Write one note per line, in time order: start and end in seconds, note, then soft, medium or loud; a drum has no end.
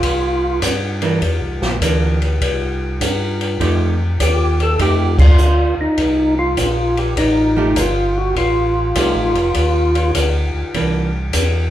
0.00 0.61 C2 medium
0.00 0.60 F4 medium
0.00 kick soft
0.00 ride medium
0.62 1.20 G2 medium
0.62 kick soft
0.62 hi-hat pedal medium
0.62 ride medium
1.02 1.20 E3 medium
1.02 1.21 A#3 medium
1.02 1.21 D4 medium
1.02 ride soft
1.21 1.41 E2 medium
1.21 kick soft
1.21 ride soft
1.41 1.62 C2 medium
1.60 1.80 A#1 medium
1.60 snare soft
1.81 2.39 D2 medium
1.81 2.17 E3 soft
1.81 2.18 A#3 medium
1.81 2.18 D4 medium
1.81 kick soft
1.81 hi-hat pedal medium
1.81 ride medium
2.22 ride soft
2.41 2.99 C2 medium
2.41 kick soft
2.41 ride medium
3.00 3.58 G2 medium
3.00 kick soft
3.00 hi-hat pedal medium
3.00 ride medium
3.41 ride soft
3.60 4.18 F2 medium
3.60 3.96 F3 medium
3.60 3.96 A3 medium
3.60 3.96 D#4 medium
3.60 3.97 G4 medium
3.60 kick soft
3.60 ride medium
4.20 4.77 D#2 medium
4.20 4.62 G4 medium
4.20 kick soft
4.20 hi-hat pedal medium
4.20 ride medium
4.60 4.79 A4 medium
4.60 ride soft
4.79 5.37 F2 medium
4.79 5.14 F3 medium
4.79 5.15 A3 medium
4.79 5.15 D#4 medium
4.79 5.15 G4 medium
4.79 5.17 G4 medium
4.79 kick soft
4.79 ride medium
5.19 5.75 F4 medium
5.19 kick medium
5.19 crash medium
5.37 5.75 D2 medium
5.37 hi-hat pedal medium
5.77 5.87 D2 soft
5.77 6.35 D#4 medium
5.98 6.56 C2 medium
5.98 kick soft
5.98 ride soft
6.39 6.99 F4 medium
6.57 7.15 A#1 medium
6.57 kick soft
6.57 hi-hat pedal medium
6.57 ride medium
6.97 7.16 G4 medium
6.97 ride soft
7.17 7.74 A1 medium
7.17 7.79 D#4 medium
7.17 kick soft
7.17 ride medium
7.56 7.74 F3 medium
7.56 7.74 A3 medium
7.56 7.75 D#4 medium
7.56 7.75 G4 medium
7.76 8.34 G1 medium
7.76 8.18 F4 medium
7.76 kick soft
7.76 hi-hat pedal medium
7.76 ride medium
8.17 8.35 F#4 medium
8.36 8.93 A1 medium
8.36 10.11 F4 medium
8.36 kick soft
8.36 ride soft
8.95 9.14 C2 medium
8.95 9.31 F3 medium
8.95 9.31 A3 medium
8.95 9.32 D#4 medium
8.95 9.32 G4 medium
8.95 kick soft
8.95 hi-hat pedal soft
8.95 ride medium
9.14 9.34 A1 medium
9.34 9.53 F1 medium
9.34 ride soft
9.54 10.12 D#2 medium
9.54 kick soft
9.54 ride medium
9.95 ride soft
10.14 10.51 D2 medium
10.14 kick soft
10.14 hi-hat pedal soft
10.14 ride medium
10.54 10.64 D2 soft
10.74 11.31 C2 medium
10.74 11.10 E3 soft
10.74 11.10 A#3 medium
10.74 11.10 D4 medium
10.74 kick soft
10.74 ride soft
11.33 11.70 E2 medium
11.33 kick soft
11.33 hi-hat pedal medium
11.33 ride medium